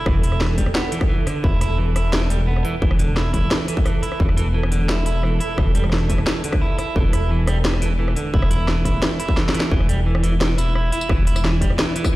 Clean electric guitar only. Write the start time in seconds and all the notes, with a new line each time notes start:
0.06 E3
0.23 E4
0.41 E3
0.58 G3
0.75 B3
0.92 E3
1.09 E3
1.27 D3
1.44 E4
1.61 E4
1.78 E3
1.96 E4
2.13 E3
2.30 G3
2.47 B3
2.64 E3
2.82 E3
2.99 D3
3.16 E4
3.33 E4
3.51 E3
3.68 E3
3.85 E3
4.02 E4
4.20 E3
4.37 E3
4.54 E3
4.72 D3
4.89 E4
5.06 E4
5.23 E3
5.40 E4
5.57 E3
5.75 G3
5.92 E3
6.09 E3
6.27 E3
6.44 D3
6.61 E4
6.78 E4
6.96 E3
7.13 E4
7.31 E3
7.48 G3
7.65 E3
7.82 E3
7.99 E3
8.16 D3
8.34 E4
8.51 E4
8.68 E3
8.85 E4
9.02 E3
9.20 E4
9.37 E3
9.54 E3
9.72 E3
9.89 G3
10.06 E3
10.23 E3
10.41 E3
10.58 E4
10.75 E4
10.92 E4
11.10 E3
11.27 E4
11.44 E3
11.61 G3
11.78 E3
11.96 E3
12.13 E3